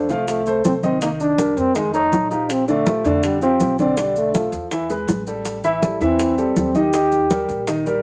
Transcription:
Already playing: D4
0.09 C2 F3 A3 F4 F5, high bongo, high conga, maracas
0.28 A3, high bongo, high conga, maracas
0.46 A3 A4 C5, high conga, maracas
0.64 C2 C4, high bongo, low bongo, high conga, maracas
0.83 D#3 C4 D#4 D#5, high bongo, high conga, maracas
1.01 D#3 A#3 D#4 D#5, high bongo, high conga, maracas
1.20 D4, high bongo, high conga, maracas
1.38 G3 G4 A#4, high bongo, high conga, maracas
1.57 F2 C4, high bongo, high conga, maracas
1.75 D#3 G#3 D#4 D#5, high bongo, high conga, maracas
1.93 A3 D#4 A4 C#5, high conga, maracas
2.12 A#1, high bongo, low bongo, high conga, maracas
2.30 F3 D#4 F4 G4, high bongo, maracas
2.49 C4, high bongo, high conga, maracas
2.68 D3 A3 D4 D5, high bongo, high conga, maracas
2.86 F3 F4 G4, high bongo, high conga, maracas
3.04 F2 D3 D4 D5, high bongo, high conga, maracas
3.23 G3, high bongo, high conga, maracas
3.42 F3 C4 F4 G4, high conga, maracas
3.60 B1, high bongo, low bongo, high conga, maracas
3.79 D3 C4 D4 D5, high bongo, high conga, maracas
3.97 D3 G3 D4 D5, high bongo, high conga, maracas
4.16 A3, high bongo, high conga, maracas
4.34 F3 F4 A4, high bongo, high conga, maracas
4.52 E2, high bongo, high conga, maracas
4.71 E3 E4 E5, high bongo, high conga, maracas
4.90 G#3 G#4 B4, high conga, maracas
5.07 A1, high bongo, low bongo, high conga, maracas
5.27 G3 G4 A4, high bongo, maracas
5.45 high bongo, high conga, maracas
5.64 E3 E4 E5, high bongo, high conga, maracas
5.82 G3 G4 A4, high bongo, high conga, maracas
6.00 E2 E3 C4 E4 E5, high bongo, high conga, maracas
6.19 high bongo, high conga, maracas
6.38 G3 G4 A4, high conga, maracas
6.56 D#2 C4, high bongo, low bongo, high conga, maracas
6.75 D#3 D#4 G4 D#5, high bongo, high conga, maracas
6.93 D#3 D#4 D#5, high bongo, high conga, maracas
7.12 high bongo, high conga, maracas
7.30 G3 G4 A#4, high bongo, high conga, maracas
7.48 A#1, high bongo, high conga, maracas
7.67 D#3 D#4 D#5, high bongo, high conga, maracas
7.86 G3 G4 A#4, high conga, maracas

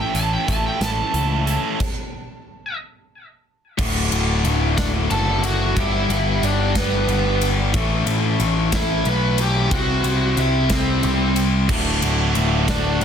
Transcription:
Already playing: A2 E3 A3 C#4 E4 A4
0.00 G5
0.13 A1 A3 C#4 E4 A4 A5, closed hi-hat
0.34 G5
0.46 A1 A3 C#4 E4 A4 A5, kick, closed hi-hat
0.67 G5
0.80 A1 A2 E3 A3 C#4 E4 A4 A5, snare, closed hi-hat
1.13 C#2 A3 C#4 E4 A4, closed hi-hat
1.46 A3 C#4 E4 A4, closed hi-hat
1.80 kick, crash
3.78 D1 D2 A2 D3 A3 F#4, kick, crash
4.11 D1 D3 A3 F#4, ride
4.44 D1 A2 D3 A3 F#4, ride
4.77 D3 A3 D4 F#4 D5, kick, snare, ride
5.10 F#1 A2 D3 A3 F#4 A4 A5, ride
5.44 D3 A3 F#4 F#5, ride
5.76 G1 G2 D3 G3 B3 D4 E4 G4 E5, kick, ride
6.09 G1 G3 B3 D4 G4, ride
6.42 G1 G3 B3 D4 G4 D5, ride
6.75 G3 B3 D4 G4 B4, kick, snare, ride
7.07 G1 G3 B3 D4, ride
7.11 G4
7.42 G3 B3 D4 G4, ride
7.74 A1 A2 E3 A3 C#4 E4 A4, kick, ride
8.06 A1 A3 C#4 E4 A4, ride
8.39 A1 A3 C#4 E4 A4, ride
8.72 A3 C#4 E4 A4 E5, kick, snare, ride
9.05 B1 A3 C#4 E4 A4 B4 B5, ride
9.38 A3 C#4 E4 G4 A4 G5, ride
9.71 C2 C3 G3 C4 E4 F#4 G4 C5 F#5, kick, ride
10.04 C2 C4 E4 G4 C5, ride
10.37 C2 C4 E4 G4 C5 E5, ride
10.69 C4 E4 G4 C5, kick, snare, ride
11.02 C2 C4 E4 G4 C5, ride
11.35 C4 E4 G4 C5, ride
11.68 D2 A2 D3 A3 F#4, kick, crash
12.02 D1 D3 A3 F#4, ride
12.35 D1 A2 D3 A3 F#4, ride
12.68 D3 A3 D4 F#4 D5, kick, snare, ride
13.00 F#1 A2 D3 A3, ride

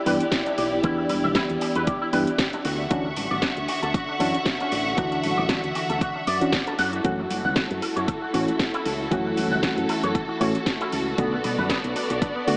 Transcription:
Already playing: E4 G4 D5
0.06 G2 E3 B3 D4 G4 B4, open hi-hat
0.20 closed hi-hat
0.32 kick, snare, closed hi-hat
0.46 D4, closed hi-hat
0.58 B1 G4, open hi-hat
0.83 E2 E3 B3 D4 E4 G4, kick, closed hi-hat
0.98 E4
1.09 E1 E4, open hi-hat, high conga
1.24 B1 E5, high conga, low conga
1.35 E4, kick, snare, closed hi-hat
1.50 E2, closed hi-hat
1.61 G4, open hi-hat
1.75 E2 B4, closed hi-hat
1.87 G4, kick, closed hi-hat
2.02 E4
2.12 G2 E3 B3 D4 G4 B4, open hi-hat
2.27 closed hi-hat
2.38 kick, snare, closed hi-hat
2.53 D4, closed hi-hat
2.64 D2 D3 F#4 E5 F#5 C#6, open hi-hat
2.90 D2 E3 C#4 D4 F#4, kick, closed hi-hat
3.05 D4
3.16 A1 D4, open hi-hat, high conga
3.31 A1 D5, high conga, low conga
3.42 D4, kick, snare, closed hi-hat
3.57 D2, closed hi-hat
3.68 F#4, open hi-hat
3.83 D2 A4, closed hi-hat
3.94 F#4, kick, closed hi-hat
4.09 D4
4.20 F#2 E3 C#4 D4 F#4 A4, open hi-hat
4.35 closed hi-hat
4.46 kick, snare, closed hi-hat
4.60 C#4, closed hi-hat
4.72 A1 F#4, open hi-hat
4.97 D2 D3 E3 D4 F#4, kick, closed hi-hat
5.12 D4, closed hi-hat
5.23 A1 D4, open hi-hat, high conga
5.37 A1 D5, high conga, low conga
5.49 D4, kick, snare, closed hi-hat
5.64 D2, closed hi-hat
5.75 F#4, open hi-hat
5.90 D2 A4, closed hi-hat
6.01 F#4, kick, closed hi-hat
6.16 D4
6.27 F#2 D5, open hi-hat
6.41 E3 C#4 D4 F#4, closed hi-hat
6.52 kick, snare, closed hi-hat
6.67 A4, closed hi-hat
6.79 F#2 E4 F#4 A4 F#5, open hi-hat
6.93 F#4, closed hi-hat
7.04 F#2 E3 A3 C#4 F#4, kick, closed hi-hat
7.19 F#4
7.30 F#1 F#4, open hi-hat, high conga
7.45 C#2 F#5, high conga, low conga
7.56 F#4, kick, snare, closed hi-hat
7.71 F#2, closed hi-hat
7.82 A4, open hi-hat
7.96 F#2 C#5, closed hi-hat
8.08 A4, kick, closed hi-hat
8.22 F#4
8.34 A2 E3 A3 C#4 F#4 C#5, open hi-hat
8.48 closed hi-hat
8.59 kick, snare, closed hi-hat
8.74 E4, closed hi-hat
8.85 C#2 A4, open hi-hat
9.11 F#2 E3 A3 C#4 F#4, kick, closed hi-hat
9.26 F#4
9.37 F#1 F#4, open hi-hat, high conga
9.51 C#2 F#5, high conga, low conga
9.63 F#4, kick, snare, closed hi-hat
9.78 F#2, closed hi-hat
9.89 A4, muted fingered electric bass stroke, open hi-hat
10.03 F#2 C#5, closed hi-hat
10.15 A4, kick, closed hi-hat
10.29 F#4
10.40 A2 E3 A3 C#4 F#4 C#5, open hi-hat
10.55 closed hi-hat
10.66 kick, snare, closed hi-hat
10.81 E4, closed hi-hat
10.92 C#2 A4, open hi-hat
11.18 B1 D3 A3 B3 F#4 D5, kick, closed hi-hat
11.33 B3
11.44 B2 B3, open hi-hat, high conga
11.58 F#2 B4, high conga, low conga
11.70 B3, kick, snare, closed hi-hat
11.84 B1, closed hi-hat
11.96 D4, open hi-hat
12.10 B1 F#4, closed hi-hat
12.22 D4, kick, closed hi-hat
12.36 B3
12.47 D2 D3 A3 B3 F#4, open hi-hat

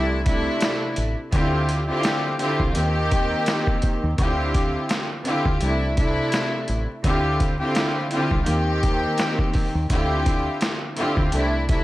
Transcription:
Already playing: C2 C3 A3 D4 E4
0.25 C3 A3 D4 E4, kick, closed hi-hat
0.61 snare, closed hi-hat
0.96 A1, closed hi-hat
1.32 D2 D3 C4 E4 F4 G4, kick, closed hi-hat
1.69 closed hi-hat
1.88 D3 C4 E4 F4 G4
2.03 snare, closed hi-hat
2.39 D3 C4 E4 F4 G4, closed hi-hat
2.60 C2, kick
2.73 D#2 D#3 A#3 C4 G4, closed hi-hat
3.11 kick, closed hi-hat
3.46 snare, closed hi-hat
3.67 kick
3.82 kick, closed hi-hat
4.04 D#2
4.18 D2 D3 C4 E4 F4 G4, kick, closed hi-hat
4.54 kick, closed hi-hat
4.89 snare, closed hi-hat
5.25 D3 C4 E4 F4 G4, closed hi-hat
5.46 D2, kick
5.61 C2 C3 A3 D4 E4, closed hi-hat
5.96 C3 A3 D4 E4, kick, closed hi-hat
6.32 snare, closed hi-hat
6.68 A1, closed hi-hat
7.04 D2 D3 C4 E4 F4 G4, kick, closed hi-hat
7.40 kick, closed hi-hat
7.59 D3 C4 E4 F4 G4
7.75 snare, closed hi-hat
8.11 D3 C4 E4 F4 G4, closed hi-hat
8.31 C2, kick
8.45 D#2 D#3 A#3 C4 G4, closed hi-hat
8.83 kick, closed hi-hat
9.18 snare, closed hi-hat
9.39 kick
9.54 kick, open hi-hat
9.75 D#2
9.90 D2 D3 C4 E4 F4 G4, kick, closed hi-hat
10.26 kick, closed hi-hat
10.61 snare, closed hi-hat
10.97 D3 C4 E4 F4 G4, closed hi-hat
11.17 D2, kick
11.32 C2 C3 A3 D4 E4, closed hi-hat
11.68 C3 A3 D4 E4, kick, closed hi-hat

